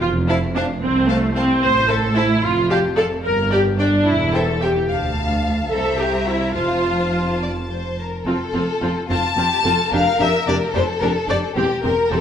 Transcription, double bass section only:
0.02 F1
0.82 C2
1.63 A1
2.44 F1
3.25 G1
4.07 E1
4.89 D2
5.72 C2
6.56 F1
8.26 F1
8.54 F1
8.82 F1
9.10 F1
9.37 F1
9.65 F1
9.92 F1
10.20 F1
10.47 F1
10.74 F1
11.02 F1
11.28 F1
11.56 E1
11.84 E1
12.12 E1

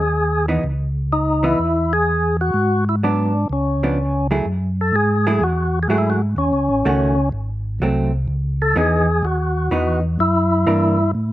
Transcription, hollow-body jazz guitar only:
0.48 E3 B3 D#4
1.43 E3 B3 D#4
3.03 F#3 B3 D4
3.83 F3 B3 D4
4.31 F#3 A3 E4 G#4
5.27 F#3 A3 E4 G#4
5.90 F#3 A3 E4 G#4
6.85 D#3 A3 C#4 F#4
7.82 F#3 A3 C4
8.76 E3 B3 D#4
9.71 E3 B3 D#4
10.67 E3 A#3 D4

